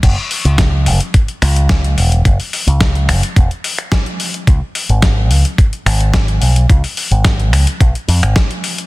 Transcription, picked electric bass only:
X:1
M:4/4
L:1/16
Q:1/4=108
K:C#phr
V:1 name="Picked electric bass" clef=bass
F,,, z2 C,,3 F,,, z3 C,,4 E,,,2 | z3 C,,3 F,,, z E,,, z6 z | C,, z2 G,,,3 C,, z3 G,,,4 B,,,2 | C,, z2 G,,,3 C,, z B,,, z ^E,, G,,, z4 |]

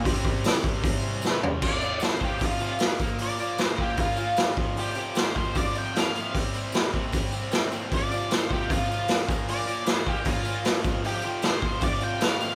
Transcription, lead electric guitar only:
X:1
M:4/4
L:1/8
Q:1/4=153
K:Flyd
V:1 name="Lead electric guitar"
z8 | d2 c G F2 z2 | d2 c G F2 z2 | G2 c2 d g f2 |
z8 | d2 c G F2 z2 | d2 c G F2 z2 | G2 c2 d g f2 |]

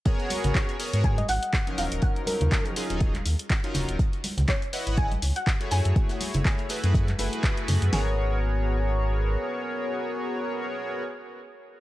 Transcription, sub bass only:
X:1
M:4/4
L:1/16
Q:"Swing 16ths" 1/4=122
K:G#m
V:1 name="Sub bass" clef=bass
z3 G,,, z3 G,,3 G,,, z3 D,,, D,,, | z3 D,, z3 D,,,3 D,, z3 D,,, D,,, | z3 C,, z3 G,,,3 C,, z3 F,, F,, | z3 F,,, z3 F,,3 F,,, z3 F,, F,, |
G,,,12 z4 | z16 |]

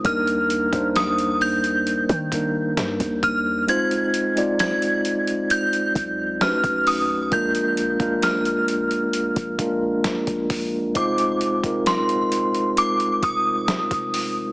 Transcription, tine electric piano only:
X:1
M:4/4
L:1/16
Q:1/4=66
K:Fdor
V:1 name="Tine electric piano"
[G,B,DEB]2 z [G,B,DEc]4- [G,B,DEc] z2 [G,B,DEB]4- [G,B,DEB] z | [A,CEFc]2 z [A,CEFd]6 z3 [=A,^CD^D^F=B]3 z | [A,B,DFB]2 z [A,B,DFB]4- [A,B,DFB] z2 [A,B,DFB]4- [A,B,DFB] z | [A,CEFc]2 z [A,CEFB]6 z6 z |]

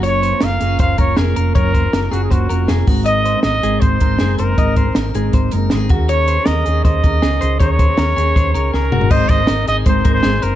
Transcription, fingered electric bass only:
X:1
M:4/4
L:1/8
Q:1/4=159
K:Abmix
V:1 name="Fingered electric bass" clef=bass
G,,,2 G,,, G,,, G,,, G,,, F,,, F,,, | G,,,2 G,,, G,,, G,,, F,,, F,,, A,,,- | A,,,2 A,,, A,,, A,,, A,,, G,,, G,,, | A,,,2 A,,, A,,, A,,, G,,, A,,, E,,- |
E,,2 E,, E,, E,, E,, D,, D,, | E,,2 E,, E,, E,, D,, D,, G,,, | A,,, A,,, A,,, A,,, A,,, A,,, A,,, G,,, |]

